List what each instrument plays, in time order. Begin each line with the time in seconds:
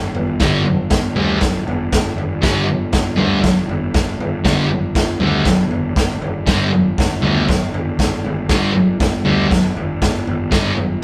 Already playing: picked electric bass G1
0.15 picked electric bass G1, floor tom
0.40 picked electric bass G1, distorted electric guitar G2 D3 G3, kick, snare, floor tom
0.65 floor tom
0.90 picked electric bass G1, kick, snare, floor tom
1.16 picked electric bass D2, distorted electric guitar G2 D3 G3, floor tom
1.41 picked electric bass G1, kick, snare, floor tom
1.66 picked electric bass G1, floor tom
1.92 picked electric bass G1, kick, snare, floor tom
2.16 picked electric bass G1, floor tom
2.42 picked electric bass G1, distorted electric guitar G2 D3 G3, kick, snare, floor tom
2.69 floor tom
2.93 picked electric bass G1, kick, snare, floor tom
3.17 picked electric bass D2, distorted electric guitar G2 D3 G3, floor tom
3.44 picked electric bass G1, kick, snare, floor tom
3.68 picked electric bass G1, floor tom
3.94 picked electric bass G1, kick, snare, floor tom
4.18 picked electric bass G1, floor tom
4.44 picked electric bass G1, distorted electric guitar G2 D3 G3, kick, snare, floor tom
4.70 floor tom
4.95 picked electric bass G1, kick, snare, floor tom
5.18 picked electric bass D2, distorted electric guitar G2 D3, floor tom
5.22 distorted electric guitar G3
5.45 picked electric bass G1, kick, snare, floor tom
5.68 picked electric bass G1, floor tom
5.95 picked electric bass G1, kick, snare, floor tom
6.18 picked electric bass G1, floor tom
6.46 picked electric bass G1, distorted electric guitar G2 D3 G3, kick, snare, floor tom
6.74 floor tom
6.98 picked electric bass G1, kick, snare, floor tom
7.21 picked electric bass D2, distorted electric guitar G2 D3 G3, floor tom
7.49 picked electric bass G1, kick, snare, floor tom
7.72 picked electric bass G1, floor tom
7.99 picked electric bass G1, kick, snare, floor tom
8.25 picked electric bass G1, floor tom
8.49 picked electric bass G1, distorted electric guitar G2 D3 G3, kick, snare, floor tom
8.75 floor tom
9.00 picked electric bass G1, kick, snare, floor tom
9.25 picked electric bass D2, distorted electric guitar G2 D3 G3, floor tom
9.51 picked electric bass G1, kick, snare, floor tom
9.75 picked electric bass G1, floor tom
10.02 picked electric bass G1, kick, snare, floor tom
10.27 picked electric bass G1, floor tom
10.52 picked electric bass G1, distorted electric guitar G2 D3 G3, kick, snare, floor tom
10.78 floor tom